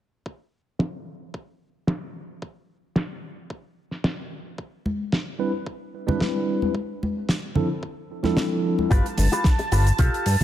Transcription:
0.26 kick
0.79 kick, snare
1.34 kick
1.87 kick, snare
2.42 kick
2.96 kick, snare
3.50 kick
3.91 snare
4.04 kick, snare
4.58 kick
4.86 high conga
5.12 kick, snare
5.39 G3 C4 D4 E4 B4
5.66 kick
6.07 G3 C4 D4 E4 B4, high conga, low conga
6.21 kick, snare
6.62 high conga
6.75 kick
7.03 high conga
7.29 kick, snare
7.55 F3 C4 D4 E4 A4, low conga
7.83 kick
8.23 F3 C4 D4 E4 A4, snare, high conga
8.37 kick, snare
8.79 high conga
8.90 G1 F4 G4 B4 A5, kick, closed hi-hat, shaker
9.06 closed hi-hat
9.17 G1, muted clean electric guitar stroke, open hi-hat, high conga, shaker
9.32 F4 G4 B4, closed hi-hat, high bongo, shaker
9.44 kick, snare, closed hi-hat, shaker
9.59 muted clean electric guitar stroke, closed hi-hat, high bongo
9.72 G1 F4 G4 B4, open hi-hat, shaker
9.87 closed hi-hat, shaker
9.98 B1 F4 G4 A4, kick, closed hi-hat, shaker
10.14 closed hi-hat
10.26 G2, open hi-hat, shaker
10.40 G1, low conga

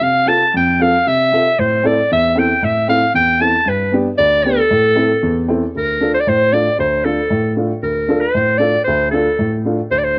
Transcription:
0.01 C3 F5
0.26 C4 F4 A4 A5
0.54 F2 G5
0.80 C4 F4 A4 F5
1.06 C3 E5
1.32 C4 F4 A4
1.59 A2 C5
1.83 C4 E4 A4 D5
2.11 E2 E5
2.36 C4 E4 A4 G5
2.62 A2 E5
2.88 C4 E4 A4 F5
3.14 E2 G5
3.40 C4 E4 A4 A5
3.66 G2 B4
3.92 B3 D4 G4
4.18 D2 D5
4.44 B3 D4 G4 A4
4.71 A2
4.96 C4 E4 A4
5.23 E2
5.48 C4 E4 A4
5.75 D2 A#4
6.00 D4 F4 A4
6.14 C5
6.20 D5
6.27 A2 C5
6.53 D4 F4 A4 D5
6.79 D2 C5
7.05 D4 F4 A4
7.30 A2
7.56 D4 F4 A4
7.82 D2 A#4
8.08 D4 F4 A4
8.21 C5
8.35 A2
8.58 D4 F4 A4 D5
8.84 D2 C5
9.11 D4 F4 A4
9.39 A2
9.65 D4 F4 A4
9.91 D2 C5
9.98 D5
10.04 C5

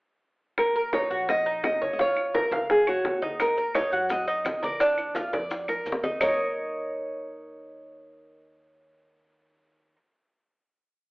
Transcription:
0.58 D#2 A#4, high bongo, high conga, claves
0.76 A#4, high conga
0.93 D#4 C#5, high bongo, high conga, claves
1.10 A#1 F#4, high conga
1.29 D#5, high bongo
1.46 D#4, high conga
1.63 F#1 D#5, high bongo, low bongo, high conga, claves
1.82 C#5, high conga
1.93 D#5
1.99 F4 C#5, high bongo, high conga
2.16 high bongo, high conga, claves
2.34 A#4, high bongo, high conga
2.51 C#2 F5, high conga
2.70 G#4, high bongo, high conga
2.87 F#4 C#5, high bongo, high conga, claves
3.04 D#2, high bongo, low bongo, high conga
3.22 D#4, high bongo, high conga
3.40 A#4, high bongo, high conga, claves, maracas
3.57 A#4, high conga, maracas
3.75 D#4 C#5, high bongo, high conga, claves, maracas
3.92 F#2 F#4, high conga, maracas
4.09 D#5, high bongo, high conga, maracas
4.28 D#4, high conga, maracas
4.45 A#1, high bongo, low bongo, high conga, claves, maracas
4.63 A#4 D5, high conga, maracas
4.80 D4, high bongo, high conga, maracas
4.98 high bongo, high conga, claves, maracas
5.15 F4, high bongo, high conga, maracas
5.33 F2 D5, high conga, maracas
5.51 high bongo, high conga, maracas
5.68 A#4, high bongo, high conga, claves, maracas
5.86 D#2, high conga, maracas
5.92 low bongo
6.04 D#4, low bongo, high conga, maracas
6.21 D#2 D#4 A#4 C#5 D#5, low bongo, low conga, claves, maracas

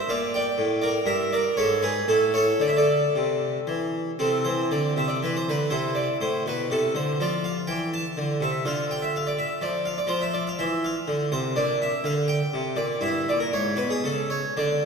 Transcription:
0.08 A#2 D5 F5
0.34 D5 G5
0.58 A2
0.82 A#4 D5
1.06 G2 A#4 E5
1.33 A#4 D5
1.57 G#2 A4 C#5
1.82 G#4 B4
2.08 A2 E4 A4
2.34 A4 C#5
2.60 D3 D5
2.68 E5
2.77 A4 D5
3.16 C3
3.67 E3
4.19 C3 C4 A4
4.45 E3 C5
4.71 D3 D5
4.96 C3 E5
5.08 D5
5.23 E3 B4
5.37 C5
5.48 D3 B4
5.70 C3 E4 C5
5.95 D5
6.21 A2 C5
6.46 B2 B4
6.70 C3 A4
6.95 D3 C5
7.20 F3 F4 D5
7.44 F5
7.67 E3 G5
7.94 A5
8.17 D3
8.41 C3 E5
8.65 D3 F4 F5
8.91 G5
9.02 E5
9.16 F5
9.27 D5
9.39 E5
9.61 F3 D5
9.85 F5
9.98 D5
10.07 F3 F4 C5
10.22 E5
10.34 D5
10.47 F5
10.59 E3 E5
10.84 F5
11.08 D3
11.32 C3 C5
11.56 A#2 D4 D5
11.82 E5
12.04 D3 F5
12.28 G5
12.54 C3
12.76 A#2 D5
13.01 G2 E4 E5
13.29 A#2 D5
13.40 A#4
13.53 G#2 C#5
13.76 B2 B4
13.90 G#4
14.04 C#3 A4
14.30 C#5
14.57 D3 D4 D5

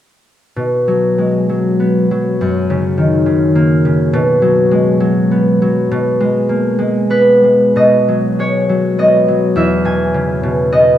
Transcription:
0.56 B2
0.88 F#3
1.18 G#3
1.49 F#3
1.80 B3
2.11 F#3
2.41 F#2
2.70 C#3
2.98 D#3
3.26 C#3
3.55 A#3
3.85 C#3
4.13 B2
4.42 F#3
4.71 G#3
5.00 F#3
5.31 B3
5.62 F#3
5.91 B2
6.20 G#3
6.49 A#3
6.79 G#3
7.10 B3 B4
7.44 G#3
7.76 B2 D#5
8.08 F#3
8.39 G#3 C#5
8.69 F#3
8.98 B3 D#5
9.28 F#3
9.56 E2 E5
9.85 B2 G#5
10.14 C#3
10.43 B2
10.72 B3 D#5

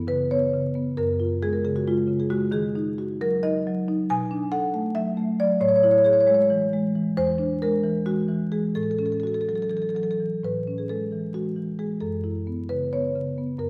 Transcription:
Already playing: F#2 B3
0.07 C#3 B4
0.31 B3 C#5
0.54 C#3
0.75 B3
0.97 F#2 A#4
1.20 F4
1.42 G#3 G#4
1.53 A#4
1.65 C#3 G#4
1.76 F#4
1.88 G#3 F4
2.07 C#3
2.20 G#4
2.30 G#3 F#4
2.51 D#3 G#4
2.75 D#4
2.98 F#4
3.21 F#3 A#4
3.43 D#4 D#5
3.67 F#3
3.88 D#4
4.10 B2 G#5
4.31 D4
4.52 A4 F#5
4.74 A3
4.95 F#3 E5
5.17 A3
5.40 F#3 D5
5.61 A2 C#5
5.69 C#5
5.76 C#5
5.83 E4 C#5
5.91 C#5
5.98 C#5
6.05 G#4 C#5
6.13 C#5
6.21 C#5
6.27 G#3 C#5
6.34 C#5
6.42 C#5
6.50 E3
6.73 G#3
6.95 E3
7.17 E2 C5
7.38 D4
7.62 G#3 A#4
7.84 E3
8.06 G#3 F#4
8.28 E3
8.52 G#3 G#4
8.75 A2 A4
8.83 A4
8.91 A4
8.98 C#4 A4
9.06 A4
9.12 A4
9.20 F#4 A4
9.27 A4
9.34 A4
9.41 A4
9.49 F#3 A4
9.56 A4
9.62 A4
9.70 E3 A4
9.77 A4
9.82 A4
9.89 A4
9.95 F#3 A4
10.03 A4
10.11 A4
10.20 E3
10.44 A2 B4
10.67 C#4
10.78 G#4
10.89 G#3 A4
11.13 E3
11.34 G#3 F#4
11.56 E3
11.79 G#3 G#4
12.00 F#2 A4
12.24 E4
12.47 B3
12.69 C#3 B4
12.93 B3 C#5
13.16 C#3
13.38 B3
13.59 F#2 A#4

